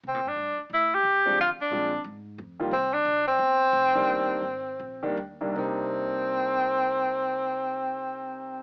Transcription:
X:1
M:4/4
L:1/8
Q:"Swing" 1/4=171
K:Cm
V:1 name="Tenor saxophone"
C D2 z =E G3 | F D3 z4 | C D2 C4- C- | C6 z2 |
C8- | C8 |]
V:2 name="Grand piano"
z6 z [F,A,CD] | z2 [F,A,CD] z4 [E,G,B,F] | z6 z [E,G,B,D]- | [E,G,B,D]2 z3 [E,G,B,D] z [C,,E,G,B,D] |
[C,G,B,DE]8- | [C,G,B,DE]8 |]
V:3 name="Upright bass" clef=bass
(3C, B,, G,, G,, z =A,,2 ^C,2 | D, z B,,2 A,,2 F,,2 | C,,2 B,,,2 G,,,2 F,,,2 | G,,,2 A,,,2 B,,,2 E,,2 |
C,,8- | C,,8 |]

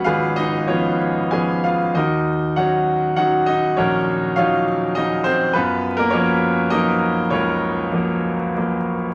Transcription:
X:1
M:3/4
L:1/16
Q:1/4=99
K:F#
V:1 name="Grand piano"
[EGBe]2 [Dd]2 [Ec]4 [Gg]2 [Ee]2 | [DFAd]4 [Fcf]4 [Ff]2 [Dd]2 | [CFAc]4 [Ece]4 d2 [^B,^B]2 | [B,EB]3 [A,A] [CAc]4 [DAd]4 |
[CEAc]8 z4 |]
V:2 name="Grand piano" clef=bass
G,,,4 [E,B,C]4 [E,B,C]4 | D,,4 [F,CD]4 [F,CD]4 | A,,,4 [F,CD]4 [C,F,D]4 | F,,4 [E,F,A,]4 [E,F,A,]4 |
C,,4 [E,F,A,]4 [E,F,A,]4 |]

